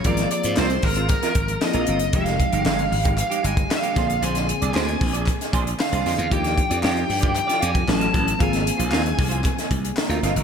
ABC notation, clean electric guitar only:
X:1
M:4/4
L:1/16
Q:1/4=115
K:Ablyd
V:1 name="Clean electric guitar"
[CFB]2 z [CFc] [CFB] z2 [CFc] z [CFB] z3 [CFB] [CFB] z | [A,EG]2 z [A,EG] [A,EG] z2 [A,EG] z [A,EG] [A,EG] z2 [A,EG] [DAc] z | [DAc]2 z [DAd] [DAc] z2 [DAd] z2 [DAc] z2 [DAc] [DAc] z | [FGd]2 z [FGd] [FGd] z2 [FGd] z [FGd] [FGd] z2 [^C^F=B] [CFB] z |
[CFB]2 z [CFc] [CFB] z2 [CFc] z4 z [CFB] [CFB] z |]